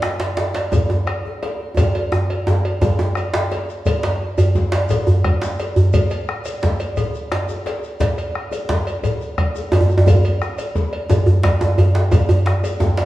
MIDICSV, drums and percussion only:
0, 0, Header, 1, 5, 480
1, 0, Start_track
1, 0, Tempo, 347423
1, 2451, Time_signature, 12, 3, 24, 8
1, 8680, Tempo, 342857
1, 18156, End_track
2, 0, Start_track
2, 0, Title_t, "Bombo"
2, 38, Note_on_c, 9, 37, 102
2, 176, Note_off_c, 9, 37, 0
2, 284, Note_on_c, 9, 37, 36
2, 422, Note_off_c, 9, 37, 0
2, 997, Note_on_c, 9, 43, 106
2, 1135, Note_off_c, 9, 43, 0
2, 1242, Note_on_c, 9, 37, 32
2, 1380, Note_off_c, 9, 37, 0
2, 1483, Note_on_c, 9, 37, 103
2, 1622, Note_off_c, 9, 37, 0
2, 1727, Note_on_c, 9, 37, 33
2, 1865, Note_off_c, 9, 37, 0
2, 2445, Note_on_c, 9, 43, 105
2, 2583, Note_off_c, 9, 43, 0
2, 2934, Note_on_c, 9, 37, 95
2, 3072, Note_off_c, 9, 37, 0
2, 3413, Note_on_c, 9, 37, 31
2, 3551, Note_off_c, 9, 37, 0
2, 3890, Note_on_c, 9, 43, 94
2, 4028, Note_off_c, 9, 43, 0
2, 4126, Note_on_c, 9, 37, 30
2, 4264, Note_off_c, 9, 37, 0
2, 4357, Note_on_c, 9, 37, 102
2, 4495, Note_off_c, 9, 37, 0
2, 5327, Note_on_c, 9, 43, 89
2, 5465, Note_off_c, 9, 43, 0
2, 5575, Note_on_c, 9, 37, 31
2, 5713, Note_off_c, 9, 37, 0
2, 6285, Note_on_c, 9, 43, 89
2, 6423, Note_off_c, 9, 43, 0
2, 7246, Note_on_c, 9, 37, 104
2, 7246, Note_on_c, 9, 43, 108
2, 7384, Note_off_c, 9, 37, 0
2, 7384, Note_off_c, 9, 43, 0
2, 8206, Note_on_c, 9, 43, 99
2, 8344, Note_off_c, 9, 43, 0
2, 8455, Note_on_c, 9, 37, 31
2, 8593, Note_off_c, 9, 37, 0
2, 8688, Note_on_c, 9, 37, 98
2, 8828, Note_off_c, 9, 37, 0
2, 9175, Note_on_c, 9, 43, 94
2, 9315, Note_off_c, 9, 43, 0
2, 10127, Note_on_c, 9, 37, 97
2, 10267, Note_off_c, 9, 37, 0
2, 11091, Note_on_c, 9, 43, 96
2, 11231, Note_off_c, 9, 43, 0
2, 11339, Note_on_c, 9, 37, 30
2, 11479, Note_off_c, 9, 37, 0
2, 11580, Note_on_c, 9, 37, 98
2, 11720, Note_off_c, 9, 37, 0
2, 12055, Note_on_c, 9, 43, 91
2, 12195, Note_off_c, 9, 43, 0
2, 13016, Note_on_c, 9, 37, 104
2, 13016, Note_on_c, 9, 43, 103
2, 13156, Note_off_c, 9, 37, 0
2, 13156, Note_off_c, 9, 43, 0
2, 13975, Note_on_c, 9, 43, 98
2, 14115, Note_off_c, 9, 43, 0
2, 14468, Note_on_c, 9, 37, 102
2, 14608, Note_off_c, 9, 37, 0
2, 14939, Note_on_c, 9, 43, 95
2, 15079, Note_off_c, 9, 43, 0
2, 15425, Note_on_c, 9, 37, 33
2, 15565, Note_off_c, 9, 37, 0
2, 15660, Note_on_c, 9, 37, 34
2, 15800, Note_off_c, 9, 37, 0
2, 15901, Note_on_c, 9, 37, 110
2, 15901, Note_on_c, 9, 43, 106
2, 16041, Note_off_c, 9, 37, 0
2, 16041, Note_off_c, 9, 43, 0
2, 16858, Note_on_c, 9, 43, 111
2, 16998, Note_off_c, 9, 43, 0
2, 17112, Note_on_c, 9, 37, 34
2, 17252, Note_off_c, 9, 37, 0
2, 17344, Note_on_c, 9, 37, 100
2, 17484, Note_off_c, 9, 37, 0
2, 17823, Note_on_c, 9, 43, 106
2, 17963, Note_off_c, 9, 43, 0
2, 18156, End_track
3, 0, Start_track
3, 0, Title_t, "Djembe"
3, 30, Note_on_c, 9, 62, 100
3, 169, Note_off_c, 9, 62, 0
3, 271, Note_on_c, 9, 62, 86
3, 291, Note_on_c, 9, 63, 53
3, 409, Note_off_c, 9, 62, 0
3, 429, Note_off_c, 9, 63, 0
3, 511, Note_on_c, 9, 62, 84
3, 522, Note_off_c, 9, 62, 0
3, 522, Note_on_c, 9, 62, 73
3, 660, Note_off_c, 9, 62, 0
3, 753, Note_on_c, 9, 62, 82
3, 891, Note_off_c, 9, 62, 0
3, 992, Note_on_c, 9, 63, 80
3, 1006, Note_off_c, 9, 63, 0
3, 1006, Note_on_c, 9, 62, 23
3, 1006, Note_on_c, 9, 63, 82
3, 1006, Note_on_c, 9, 64, 81
3, 1145, Note_off_c, 9, 62, 0
3, 1145, Note_off_c, 9, 63, 0
3, 1145, Note_off_c, 9, 64, 0
3, 1239, Note_on_c, 9, 63, 77
3, 1251, Note_on_c, 9, 62, 60
3, 1378, Note_off_c, 9, 63, 0
3, 1389, Note_off_c, 9, 62, 0
3, 1733, Note_on_c, 9, 63, 59
3, 1871, Note_off_c, 9, 63, 0
3, 1973, Note_on_c, 9, 62, 80
3, 2111, Note_off_c, 9, 62, 0
3, 2219, Note_on_c, 9, 62, 25
3, 2357, Note_off_c, 9, 62, 0
3, 2449, Note_on_c, 9, 63, 98
3, 2459, Note_off_c, 9, 63, 0
3, 2459, Note_on_c, 9, 63, 82
3, 2459, Note_on_c, 9, 64, 80
3, 2597, Note_off_c, 9, 63, 0
3, 2597, Note_off_c, 9, 64, 0
3, 2700, Note_on_c, 9, 62, 63
3, 2838, Note_off_c, 9, 62, 0
3, 2928, Note_on_c, 9, 63, 103
3, 3066, Note_off_c, 9, 63, 0
3, 3183, Note_on_c, 9, 63, 61
3, 3321, Note_off_c, 9, 63, 0
3, 3410, Note_on_c, 9, 63, 113
3, 3424, Note_on_c, 9, 62, 83
3, 3549, Note_off_c, 9, 63, 0
3, 3562, Note_off_c, 9, 62, 0
3, 3890, Note_on_c, 9, 63, 102
3, 3906, Note_off_c, 9, 63, 0
3, 3906, Note_on_c, 9, 63, 82
3, 3906, Note_on_c, 9, 64, 80
3, 4044, Note_off_c, 9, 63, 0
3, 4044, Note_off_c, 9, 64, 0
3, 4130, Note_on_c, 9, 63, 105
3, 4141, Note_on_c, 9, 62, 60
3, 4269, Note_off_c, 9, 63, 0
3, 4279, Note_off_c, 9, 62, 0
3, 4609, Note_on_c, 9, 62, 105
3, 4624, Note_on_c, 9, 63, 64
3, 4747, Note_off_c, 9, 62, 0
3, 4762, Note_off_c, 9, 63, 0
3, 4856, Note_on_c, 9, 62, 82
3, 4994, Note_off_c, 9, 62, 0
3, 5337, Note_on_c, 9, 63, 85
3, 5337, Note_on_c, 9, 64, 86
3, 5475, Note_off_c, 9, 63, 0
3, 5475, Note_off_c, 9, 64, 0
3, 5571, Note_on_c, 9, 62, 90
3, 5709, Note_off_c, 9, 62, 0
3, 6049, Note_on_c, 9, 64, 90
3, 6054, Note_on_c, 9, 62, 25
3, 6054, Note_on_c, 9, 63, 62
3, 6187, Note_off_c, 9, 64, 0
3, 6192, Note_off_c, 9, 62, 0
3, 6192, Note_off_c, 9, 63, 0
3, 6294, Note_on_c, 9, 62, 79
3, 6432, Note_off_c, 9, 62, 0
3, 6521, Note_on_c, 9, 62, 92
3, 6659, Note_off_c, 9, 62, 0
3, 6778, Note_on_c, 9, 63, 82
3, 6778, Note_on_c, 9, 64, 77
3, 6916, Note_off_c, 9, 63, 0
3, 6916, Note_off_c, 9, 64, 0
3, 7004, Note_on_c, 9, 64, 82
3, 7142, Note_off_c, 9, 64, 0
3, 7261, Note_on_c, 9, 62, 23
3, 7400, Note_off_c, 9, 62, 0
3, 7482, Note_on_c, 9, 62, 86
3, 7498, Note_on_c, 9, 63, 60
3, 7620, Note_off_c, 9, 62, 0
3, 7637, Note_off_c, 9, 63, 0
3, 7728, Note_on_c, 9, 62, 74
3, 7867, Note_off_c, 9, 62, 0
3, 7961, Note_on_c, 9, 64, 89
3, 8100, Note_off_c, 9, 64, 0
3, 8202, Note_on_c, 9, 63, 76
3, 8202, Note_on_c, 9, 64, 73
3, 8340, Note_off_c, 9, 63, 0
3, 8340, Note_off_c, 9, 64, 0
3, 8928, Note_on_c, 9, 62, 23
3, 8928, Note_on_c, 9, 63, 59
3, 9068, Note_off_c, 9, 62, 0
3, 9068, Note_off_c, 9, 63, 0
3, 9163, Note_on_c, 9, 62, 86
3, 9172, Note_off_c, 9, 62, 0
3, 9172, Note_on_c, 9, 62, 79
3, 9312, Note_off_c, 9, 62, 0
3, 9649, Note_on_c, 9, 63, 80
3, 9649, Note_on_c, 9, 64, 83
3, 9789, Note_off_c, 9, 63, 0
3, 9789, Note_off_c, 9, 64, 0
3, 10130, Note_on_c, 9, 62, 85
3, 10136, Note_off_c, 9, 62, 0
3, 10136, Note_on_c, 9, 62, 24
3, 10276, Note_off_c, 9, 62, 0
3, 10366, Note_on_c, 9, 63, 64
3, 10506, Note_off_c, 9, 63, 0
3, 10608, Note_on_c, 9, 62, 90
3, 10748, Note_off_c, 9, 62, 0
3, 11087, Note_on_c, 9, 63, 86
3, 11087, Note_on_c, 9, 64, 88
3, 11093, Note_on_c, 9, 62, 78
3, 11227, Note_off_c, 9, 63, 0
3, 11227, Note_off_c, 9, 64, 0
3, 11233, Note_off_c, 9, 62, 0
3, 11806, Note_on_c, 9, 62, 26
3, 11806, Note_on_c, 9, 63, 67
3, 11946, Note_off_c, 9, 62, 0
3, 11946, Note_off_c, 9, 63, 0
3, 12050, Note_on_c, 9, 62, 86
3, 12051, Note_off_c, 9, 62, 0
3, 12051, Note_on_c, 9, 62, 90
3, 12191, Note_off_c, 9, 62, 0
3, 12532, Note_on_c, 9, 63, 88
3, 12532, Note_on_c, 9, 64, 91
3, 12672, Note_off_c, 9, 63, 0
3, 12672, Note_off_c, 9, 64, 0
3, 13025, Note_on_c, 9, 62, 24
3, 13165, Note_off_c, 9, 62, 0
3, 13262, Note_on_c, 9, 63, 64
3, 13402, Note_off_c, 9, 63, 0
3, 13490, Note_on_c, 9, 63, 117
3, 13508, Note_on_c, 9, 62, 83
3, 13615, Note_on_c, 9, 64, 86
3, 13630, Note_off_c, 9, 63, 0
3, 13648, Note_off_c, 9, 62, 0
3, 13755, Note_off_c, 9, 64, 0
3, 13851, Note_on_c, 9, 63, 115
3, 13970, Note_on_c, 9, 64, 84
3, 13985, Note_off_c, 9, 63, 0
3, 13985, Note_off_c, 9, 64, 0
3, 13985, Note_on_c, 9, 62, 27
3, 13985, Note_on_c, 9, 63, 86
3, 13985, Note_on_c, 9, 64, 88
3, 14125, Note_off_c, 9, 62, 0
3, 14125, Note_off_c, 9, 63, 0
3, 14125, Note_off_c, 9, 64, 0
3, 14470, Note_on_c, 9, 62, 26
3, 14610, Note_off_c, 9, 62, 0
3, 14707, Note_on_c, 9, 63, 66
3, 14847, Note_off_c, 9, 63, 0
3, 14942, Note_on_c, 9, 62, 80
3, 15082, Note_off_c, 9, 62, 0
3, 15186, Note_on_c, 9, 62, 26
3, 15326, Note_off_c, 9, 62, 0
3, 15418, Note_on_c, 9, 63, 99
3, 15427, Note_off_c, 9, 63, 0
3, 15427, Note_on_c, 9, 62, 26
3, 15427, Note_on_c, 9, 63, 83
3, 15427, Note_on_c, 9, 64, 90
3, 15567, Note_off_c, 9, 62, 0
3, 15567, Note_off_c, 9, 63, 0
3, 15567, Note_off_c, 9, 64, 0
3, 15653, Note_on_c, 9, 64, 82
3, 15665, Note_off_c, 9, 64, 0
3, 15665, Note_on_c, 9, 64, 47
3, 15805, Note_off_c, 9, 64, 0
3, 15891, Note_on_c, 9, 62, 86
3, 15909, Note_on_c, 9, 64, 50
3, 16031, Note_off_c, 9, 62, 0
3, 16049, Note_off_c, 9, 64, 0
3, 16138, Note_on_c, 9, 63, 112
3, 16145, Note_on_c, 9, 64, 59
3, 16278, Note_off_c, 9, 63, 0
3, 16285, Note_off_c, 9, 64, 0
3, 16374, Note_on_c, 9, 64, 85
3, 16382, Note_on_c, 9, 62, 65
3, 16514, Note_off_c, 9, 64, 0
3, 16522, Note_off_c, 9, 62, 0
3, 16612, Note_on_c, 9, 62, 83
3, 16620, Note_off_c, 9, 62, 0
3, 16620, Note_on_c, 9, 62, 73
3, 16760, Note_off_c, 9, 62, 0
3, 16845, Note_on_c, 9, 63, 109
3, 16857, Note_off_c, 9, 63, 0
3, 16857, Note_on_c, 9, 63, 86
3, 16857, Note_on_c, 9, 64, 85
3, 16997, Note_off_c, 9, 63, 0
3, 16997, Note_off_c, 9, 64, 0
3, 17088, Note_on_c, 9, 64, 90
3, 17228, Note_off_c, 9, 64, 0
3, 17326, Note_on_c, 9, 62, 81
3, 17466, Note_off_c, 9, 62, 0
3, 17571, Note_on_c, 9, 62, 27
3, 17571, Note_on_c, 9, 63, 67
3, 17711, Note_off_c, 9, 62, 0
3, 17711, Note_off_c, 9, 63, 0
3, 17806, Note_on_c, 9, 63, 110
3, 17813, Note_on_c, 9, 62, 87
3, 17946, Note_off_c, 9, 63, 0
3, 17953, Note_off_c, 9, 62, 0
3, 18048, Note_on_c, 9, 62, 89
3, 18156, Note_off_c, 9, 62, 0
3, 18156, End_track
4, 0, Start_track
4, 0, Title_t, "Shekere"
4, 755, Note_on_c, 9, 82, 18
4, 893, Note_off_c, 9, 82, 0
4, 1003, Note_on_c, 9, 82, 67
4, 1141, Note_off_c, 9, 82, 0
4, 2450, Note_on_c, 9, 82, 63
4, 2588, Note_off_c, 9, 82, 0
4, 2934, Note_on_c, 9, 82, 19
4, 3073, Note_off_c, 9, 82, 0
4, 3416, Note_on_c, 9, 82, 18
4, 3555, Note_off_c, 9, 82, 0
4, 3893, Note_on_c, 9, 82, 65
4, 4031, Note_off_c, 9, 82, 0
4, 4135, Note_on_c, 9, 82, 18
4, 4273, Note_off_c, 9, 82, 0
4, 4373, Note_on_c, 9, 82, 19
4, 4511, Note_off_c, 9, 82, 0
4, 4856, Note_on_c, 9, 82, 18
4, 4994, Note_off_c, 9, 82, 0
4, 5105, Note_on_c, 9, 82, 19
4, 5243, Note_off_c, 9, 82, 0
4, 5331, Note_on_c, 9, 82, 61
4, 5469, Note_off_c, 9, 82, 0
4, 5570, Note_on_c, 9, 82, 19
4, 5708, Note_off_c, 9, 82, 0
4, 6054, Note_on_c, 9, 82, 51
4, 6192, Note_off_c, 9, 82, 0
4, 6291, Note_on_c, 9, 82, 19
4, 6429, Note_off_c, 9, 82, 0
4, 6527, Note_on_c, 9, 82, 19
4, 6665, Note_off_c, 9, 82, 0
4, 6758, Note_on_c, 9, 82, 71
4, 6896, Note_off_c, 9, 82, 0
4, 7007, Note_on_c, 9, 82, 20
4, 7145, Note_off_c, 9, 82, 0
4, 7491, Note_on_c, 9, 82, 53
4, 7629, Note_off_c, 9, 82, 0
4, 7727, Note_on_c, 9, 82, 22
4, 7865, Note_off_c, 9, 82, 0
4, 7964, Note_on_c, 9, 82, 22
4, 8102, Note_off_c, 9, 82, 0
4, 8196, Note_on_c, 9, 82, 70
4, 8334, Note_off_c, 9, 82, 0
4, 8431, Note_on_c, 9, 82, 21
4, 8569, Note_off_c, 9, 82, 0
4, 8916, Note_on_c, 9, 82, 56
4, 9056, Note_off_c, 9, 82, 0
4, 9161, Note_on_c, 9, 82, 21
4, 9301, Note_off_c, 9, 82, 0
4, 9399, Note_on_c, 9, 82, 20
4, 9539, Note_off_c, 9, 82, 0
4, 9638, Note_on_c, 9, 82, 70
4, 9778, Note_off_c, 9, 82, 0
4, 9885, Note_on_c, 9, 82, 20
4, 10025, Note_off_c, 9, 82, 0
4, 10368, Note_on_c, 9, 82, 48
4, 10508, Note_off_c, 9, 82, 0
4, 10619, Note_on_c, 9, 82, 20
4, 10759, Note_off_c, 9, 82, 0
4, 10853, Note_on_c, 9, 82, 21
4, 10993, Note_off_c, 9, 82, 0
4, 11089, Note_on_c, 9, 82, 65
4, 11229, Note_off_c, 9, 82, 0
4, 11337, Note_on_c, 9, 82, 19
4, 11477, Note_off_c, 9, 82, 0
4, 11819, Note_on_c, 9, 82, 49
4, 11959, Note_off_c, 9, 82, 0
4, 12064, Note_on_c, 9, 82, 19
4, 12204, Note_off_c, 9, 82, 0
4, 12306, Note_on_c, 9, 82, 18
4, 12446, Note_off_c, 9, 82, 0
4, 12542, Note_on_c, 9, 82, 65
4, 12682, Note_off_c, 9, 82, 0
4, 12784, Note_on_c, 9, 82, 20
4, 12924, Note_off_c, 9, 82, 0
4, 13260, Note_on_c, 9, 82, 49
4, 13400, Note_off_c, 9, 82, 0
4, 13499, Note_on_c, 9, 82, 19
4, 13639, Note_off_c, 9, 82, 0
4, 13742, Note_on_c, 9, 82, 21
4, 13882, Note_off_c, 9, 82, 0
4, 13989, Note_on_c, 9, 82, 64
4, 14129, Note_off_c, 9, 82, 0
4, 14221, Note_on_c, 9, 82, 19
4, 14361, Note_off_c, 9, 82, 0
4, 14472, Note_on_c, 9, 82, 19
4, 14612, Note_off_c, 9, 82, 0
4, 14705, Note_on_c, 9, 82, 50
4, 14845, Note_off_c, 9, 82, 0
4, 14948, Note_on_c, 9, 82, 18
4, 15088, Note_off_c, 9, 82, 0
4, 15422, Note_on_c, 9, 82, 64
4, 15562, Note_off_c, 9, 82, 0
4, 15900, Note_on_c, 9, 82, 19
4, 16040, Note_off_c, 9, 82, 0
4, 16135, Note_on_c, 9, 82, 50
4, 16275, Note_off_c, 9, 82, 0
4, 16851, Note_on_c, 9, 82, 67
4, 16991, Note_off_c, 9, 82, 0
4, 17097, Note_on_c, 9, 82, 20
4, 17237, Note_off_c, 9, 82, 0
4, 17584, Note_on_c, 9, 82, 51
4, 17724, Note_off_c, 9, 82, 0
4, 17819, Note_on_c, 9, 82, 20
4, 17959, Note_off_c, 9, 82, 0
4, 18056, Note_on_c, 9, 82, 20
4, 18156, Note_off_c, 9, 82, 0
4, 18156, End_track
5, 0, Start_track
5, 0, Title_t, "Drums"
5, 279, Note_on_c, 9, 56, 55
5, 417, Note_off_c, 9, 56, 0
5, 763, Note_on_c, 9, 56, 56
5, 901, Note_off_c, 9, 56, 0
5, 1005, Note_on_c, 9, 56, 53
5, 1143, Note_off_c, 9, 56, 0
5, 1477, Note_on_c, 9, 56, 53
5, 1615, Note_off_c, 9, 56, 0
5, 1970, Note_on_c, 9, 56, 56
5, 2108, Note_off_c, 9, 56, 0
5, 2449, Note_on_c, 9, 56, 70
5, 2587, Note_off_c, 9, 56, 0
5, 2694, Note_on_c, 9, 56, 53
5, 2832, Note_off_c, 9, 56, 0
5, 3179, Note_on_c, 9, 56, 54
5, 3317, Note_off_c, 9, 56, 0
5, 3661, Note_on_c, 9, 56, 54
5, 3799, Note_off_c, 9, 56, 0
5, 3894, Note_on_c, 9, 56, 56
5, 4033, Note_off_c, 9, 56, 0
5, 4382, Note_on_c, 9, 56, 49
5, 4520, Note_off_c, 9, 56, 0
5, 4863, Note_on_c, 9, 56, 54
5, 5001, Note_off_c, 9, 56, 0
5, 5341, Note_on_c, 9, 56, 78
5, 5479, Note_off_c, 9, 56, 0
5, 5578, Note_on_c, 9, 56, 65
5, 5716, Note_off_c, 9, 56, 0
5, 6055, Note_on_c, 9, 56, 59
5, 6194, Note_off_c, 9, 56, 0
5, 6534, Note_on_c, 9, 56, 62
5, 6672, Note_off_c, 9, 56, 0
5, 6776, Note_on_c, 9, 56, 61
5, 6914, Note_off_c, 9, 56, 0
5, 7247, Note_on_c, 9, 56, 60
5, 7386, Note_off_c, 9, 56, 0
5, 7731, Note_on_c, 9, 56, 59
5, 7870, Note_off_c, 9, 56, 0
5, 8204, Note_on_c, 9, 56, 78
5, 8342, Note_off_c, 9, 56, 0
5, 8443, Note_on_c, 9, 56, 60
5, 8581, Note_off_c, 9, 56, 0
5, 8922, Note_on_c, 9, 56, 57
5, 9062, Note_off_c, 9, 56, 0
5, 9402, Note_on_c, 9, 56, 59
5, 9542, Note_off_c, 9, 56, 0
5, 9644, Note_on_c, 9, 56, 61
5, 9784, Note_off_c, 9, 56, 0
5, 10129, Note_on_c, 9, 56, 58
5, 10269, Note_off_c, 9, 56, 0
5, 10619, Note_on_c, 9, 56, 56
5, 10759, Note_off_c, 9, 56, 0
5, 11102, Note_on_c, 9, 56, 71
5, 11242, Note_off_c, 9, 56, 0
5, 11339, Note_on_c, 9, 56, 57
5, 11479, Note_off_c, 9, 56, 0
5, 11820, Note_on_c, 9, 56, 57
5, 11960, Note_off_c, 9, 56, 0
5, 12301, Note_on_c, 9, 56, 58
5, 12441, Note_off_c, 9, 56, 0
5, 12536, Note_on_c, 9, 56, 57
5, 12676, Note_off_c, 9, 56, 0
5, 13019, Note_on_c, 9, 56, 60
5, 13159, Note_off_c, 9, 56, 0
5, 13510, Note_on_c, 9, 56, 62
5, 13650, Note_off_c, 9, 56, 0
5, 13993, Note_on_c, 9, 56, 77
5, 14133, Note_off_c, 9, 56, 0
5, 14233, Note_on_c, 9, 56, 58
5, 14373, Note_off_c, 9, 56, 0
5, 14702, Note_on_c, 9, 56, 57
5, 14842, Note_off_c, 9, 56, 0
5, 15183, Note_on_c, 9, 56, 53
5, 15323, Note_off_c, 9, 56, 0
5, 15427, Note_on_c, 9, 56, 55
5, 15567, Note_off_c, 9, 56, 0
5, 15908, Note_on_c, 9, 56, 53
5, 16048, Note_off_c, 9, 56, 0
5, 16383, Note_on_c, 9, 56, 52
5, 16523, Note_off_c, 9, 56, 0
5, 16853, Note_on_c, 9, 56, 64
5, 16993, Note_off_c, 9, 56, 0
5, 17093, Note_on_c, 9, 56, 49
5, 17233, Note_off_c, 9, 56, 0
5, 17580, Note_on_c, 9, 56, 52
5, 17720, Note_off_c, 9, 56, 0
5, 18057, Note_on_c, 9, 56, 51
5, 18156, Note_off_c, 9, 56, 0
5, 18156, End_track
0, 0, End_of_file